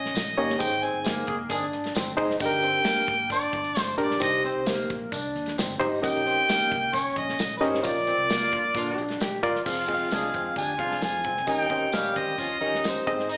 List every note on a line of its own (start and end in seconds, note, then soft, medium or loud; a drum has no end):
0.00 0.11 A#1 medium
0.00 0.13 C#4 medium
0.00 0.35 D#5 medium
0.00 closed hi-hat medium
0.05 snare soft
0.14 0.33 A#1 medium
0.14 snare loud
0.14 closed hi-hat medium
0.14 tambourine loud
0.37 0.56 G1 medium
0.37 0.56 A#3 medium
0.37 0.53 C#4 medium
0.37 0.56 C#4 medium
0.37 0.56 D#4 medium
0.37 0.56 G4 medium
0.37 0.55 C#5 medium
0.37 0.63 D#5 medium
0.37 open hi-hat medium
0.50 snare soft
0.59 0.88 G#1 loud
0.59 1.31 D#4 medium
0.59 1.31 G#4 medium
0.59 1.31 C5 medium
0.59 0.85 G5 loud
0.59 kick loud
0.59 closed hi-hat medium
0.59 tambourine medium
0.72 closed hi-hat medium
0.83 0.99 C4 medium
0.83 1.28 G#5 loud
0.83 closed hi-hat medium
0.94 1.22 G1 medium
1.04 1.48 A#3 loud
1.04 snare loud
1.04 closed hi-hat medium
1.04 tambourine medium
1.26 1.47 F1 medium
1.26 1.37 D#3 medium
1.26 1.37 C4 medium
1.26 1.37 G#4 loud
1.26 kick medium
1.26 closed hi-hat medium
1.49 1.69 G1 medium
1.49 1.64 D#3 medium
1.49 1.64 C4 medium
1.49 1.93 D4 medium
1.49 1.64 G#4 loud
1.49 kick medium
1.49 closed hi-hat medium
1.49 tambourine medium
1.73 1.92 G#1 loud
1.73 closed hi-hat medium
1.84 snare soft
1.84 closed hi-hat medium
1.95 2.15 G1 medium
1.95 2.11 C4 medium
1.95 snare loud
1.95 closed hi-hat medium
1.95 tambourine loud
2.17 2.37 F1 medium
2.17 2.36 D#4 loud
2.17 2.34 D#4 medium
2.17 2.36 G#4 medium
2.17 2.36 C5 loud
2.17 kick loud
2.17 open hi-hat medium
2.30 snare soft
2.40 2.78 G1 loud
2.40 3.12 D4 medium
2.40 3.12 G4 medium
2.40 2.46 A4 medium
2.40 3.28 G5 loud
2.40 kick loud
2.40 closed hi-hat medium
2.40 tambourine medium
2.46 3.15 A#4 medium
2.52 closed hi-hat medium
2.63 2.79 C4 medium
2.63 closed hi-hat medium
2.84 3.29 A#3 medium
2.84 snare loud
2.84 closed hi-hat medium
2.84 tambourine medium
2.97 muted fingered electric bass stroke soft
3.06 3.46 G#1 medium
3.06 kick loud
3.06 closed hi-hat medium
3.30 3.74 D4 medium
3.30 3.81 D5 medium
3.30 kick loud
3.30 closed hi-hat medium
3.30 tambourine medium
3.53 3.72 G1 medium
3.53 kick loud
3.53 closed hi-hat medium
3.64 closed hi-hat medium
3.75 3.95 G1 medium
3.75 snare loud
3.75 closed hi-hat medium
3.75 tambourine loud
3.81 3.96 C5 medium
3.98 4.18 A#1 medium
3.98 4.17 D4 medium
3.98 4.15 D4 medium
3.98 4.17 G4 medium
3.98 4.17 A#4 medium
3.98 4.21 D5 medium
3.98 closed hi-hat medium
4.11 snare soft
4.20 4.50 C2 loud
4.20 4.92 D#4 medium
4.20 4.93 G4 medium
4.20 4.93 C5 medium
4.20 4.43 D#5 loud
4.20 kick loud
4.20 closed hi-hat medium
4.20 tambourine medium
4.34 closed hi-hat medium
4.44 4.60 C4 medium
4.44 4.87 C5 medium
4.44 closed hi-hat medium
4.55 4.84 C2 medium
4.66 5.10 A#3 medium
4.66 snare loud
4.66 closed hi-hat medium
4.66 tambourine medium
4.90 5.09 A#1 medium
4.90 kick loud
4.90 closed hi-hat medium
5.12 5.31 C2 medium
5.12 5.55 D4 medium
5.12 kick loud
5.12 closed hi-hat medium
5.12 tambourine medium
5.35 5.59 D#2 loud
5.35 closed hi-hat medium
5.46 snare soft
5.46 closed hi-hat medium
5.57 5.77 G1 medium
5.57 5.74 C4 medium
5.57 snare loud
5.57 closed hi-hat medium
5.57 tambourine loud
5.80 6.00 G#1 medium
5.80 5.98 D#4 loud
5.80 5.96 D#4 medium
5.80 5.98 G4 medium
5.80 5.98 C5 loud
5.80 kick loud
5.80 open hi-hat medium
6.02 6.41 A#1 loud
6.02 6.74 C#4 medium
6.02 6.74 D#4 medium
6.02 6.75 G4 medium
6.02 6.74 A#4 medium
6.02 6.75 D#5 medium
6.02 6.97 G5 loud
6.02 kick loud
6.02 closed hi-hat medium
6.02 tambourine medium
6.16 closed hi-hat medium
6.26 6.42 C4 medium
6.26 closed hi-hat medium
6.49 6.91 A#3 medium
6.49 snare loud
6.49 closed hi-hat medium
6.49 tambourine medium
6.60 muted fingered electric bass stroke medium
6.71 7.09 C2 medium
6.71 kick loud
6.71 closed hi-hat medium
6.93 7.37 C#4 medium
6.93 7.20 C#5 medium
6.93 kick loud
6.93 closed hi-hat medium
6.93 tambourine medium
7.16 7.35 A#1 loud
7.16 7.57 D#5 loud
7.16 kick loud
7.16 closed hi-hat medium
7.29 snare soft
7.39 7.58 A#1 medium
7.39 snare loud
7.39 closed hi-hat medium
7.39 tambourine loud
7.57 7.80 G#1 medium
7.57 7.79 C#4 medium
7.57 7.79 D#4 medium
7.57 7.79 G4 medium
7.57 7.79 A#4 medium
7.57 7.67 B4 medium
7.61 7.78 C#4 medium
7.61 7.89 C5 medium
7.61 7.80 D#5 medium
7.61 closed hi-hat loud
7.74 snare soft
7.83 8.13 A#1 loud
7.83 8.55 F4 medium
7.83 8.55 A#4 medium
7.83 7.89 C#5 medium
7.83 kick loud
7.83 closed hi-hat loud
7.83 tambourine medium
7.87 9.22 D5 loud
7.87 8.58 D5 medium
7.97 closed hi-hat medium
8.07 8.24 C4 medium
8.07 closed hi-hat medium
8.18 8.53 C2 medium
8.30 8.73 A#3 medium
8.30 snare loud
8.30 closed hi-hat medium
8.30 tambourine medium
8.52 8.72 A#1 medium
8.52 8.62 D3 medium
8.52 8.62 A#3 medium
8.52 8.62 F4 medium
8.52 kick loud
8.52 closed hi-hat medium
8.75 8.94 A#2 loud
8.75 9.04 D3 medium
8.75 9.05 A#3 medium
8.75 9.19 D4 medium
8.75 9.05 F4 loud
8.75 kick loud
8.75 closed hi-hat medium
8.75 tambourine medium
8.98 9.17 A#1 medium
8.98 closed hi-hat medium
9.09 snare soft
9.09 closed hi-hat medium
9.20 9.40 A#1 medium
9.20 9.37 G4 medium
9.20 snare loud
9.20 closed hi-hat medium
9.20 tambourine loud
9.43 9.53 G1 medium
9.43 9.61 F4 loud
9.43 9.60 F4 medium
9.43 9.61 A#4 medium
9.43 9.61 D5 loud
9.43 kick loud
9.43 closed hi-hat loud
9.56 snare soft
9.66 10.04 F1 loud
9.66 10.09 F3 medium
9.66 9.84 C4 medium
9.66 9.84 F4 medium
9.66 10.09 F4 loud
9.66 9.84 G#4 medium
9.66 9.84 F5 medium
9.66 10.54 F5 medium
9.66 kick loud
9.66 crash medium
9.66 tambourine medium
9.88 10.60 C4 medium
9.88 10.05 C4 medium
9.88 10.60 F4 medium
9.88 10.60 G#4 medium
9.88 9.94 D#5 medium
9.88 kick medium
9.88 closed hi-hat medium
9.94 10.63 F5 medium
10.11 10.30 C2 medium
10.11 10.54 G#3 medium
10.11 10.28 D4 medium
10.11 10.54 G#4 loud
10.11 snare loud
10.11 closed hi-hat medium
10.11 tambourine medium
10.34 10.53 F2 medium
10.34 10.50 C4 medium
10.34 kick loud
10.34 closed hi-hat medium
10.56 10.76 D2 medium
10.56 10.75 G3 medium
10.56 10.73 D4 medium
10.56 10.75 G4 medium
10.56 11.00 G#5 loud
10.56 kick medium
10.56 closed hi-hat medium
10.56 tambourine medium
10.78 11.22 F3 loud
10.78 11.33 C4 medium
10.78 10.96 D4 medium
10.78 11.22 F4 loud
10.78 11.33 F4 medium
10.78 11.33 G#4 soft
10.78 11.33 F5 medium
10.78 kick loud
10.78 closed hi-hat medium
10.91 snare soft
11.02 11.26 F2 medium
11.02 11.45 G#5 loud
11.02 snare loud
11.02 closed hi-hat medium
11.02 tambourine loud
11.24 11.44 C2 medium
11.24 11.41 C4 medium
11.24 kick medium
11.24 closed hi-hat medium
11.37 snare soft
11.47 11.86 D#2 loud
11.47 11.90 D#3 medium
11.47 11.66 C#4 medium
11.47 11.90 D#4 loud
11.47 11.66 G4 medium
11.47 11.66 A#4 medium
11.47 11.66 D#5 medium
11.47 11.97 G5 loud
11.47 kick loud
11.47 closed hi-hat medium
11.47 tambourine medium
11.70 11.86 C4 medium
11.70 12.42 C#4 medium
11.70 12.42 G4 medium
11.70 12.42 A#4 medium
11.70 12.42 D#5 medium
11.70 kick medium
11.70 closed hi-hat medium
11.92 12.12 A#1 medium
11.92 12.36 G3 loud
11.92 12.09 C#4 medium
11.92 12.36 G4 loud
11.92 12.20 F5 loud
11.92 snare loud
11.92 closed hi-hat medium
11.92 tambourine medium
12.16 12.35 D#3 medium
12.16 12.32 C4 medium
12.16 12.85 D#5 loud
12.16 kick loud
12.16 closed hi-hat medium
12.38 12.57 D#2 medium
12.38 12.56 F3 medium
12.38 12.55 C#4 medium
12.38 12.57 F4 loud
12.38 kick medium
12.38 closed hi-hat medium
12.38 tambourine medium
12.60 12.99 D#2 medium
12.60 13.04 D#3 medium
12.60 12.77 C#4 medium
12.60 13.07 C#4 medium
12.60 13.04 D#4 loud
12.60 13.07 G4 medium
12.60 13.07 A#4 medium
12.60 13.06 D#5 medium
12.60 closed hi-hat medium
12.74 snare soft
12.84 13.28 C5 medium
12.84 snare loud
12.84 closed hi-hat medium
12.84 tambourine loud
13.06 13.37 G#1 medium
13.06 13.22 C4 medium
13.06 13.37 C4 medium
13.06 13.37 D#4 medium
13.06 13.37 G#4 medium
13.06 13.37 D#5 loud
13.06 kick loud
13.06 open hi-hat medium
13.19 snare soft
13.29 13.37 D#3 medium
13.29 13.37 D#4 loud
13.29 13.37 D#5 loud
13.29 closed hi-hat medium
13.29 tambourine medium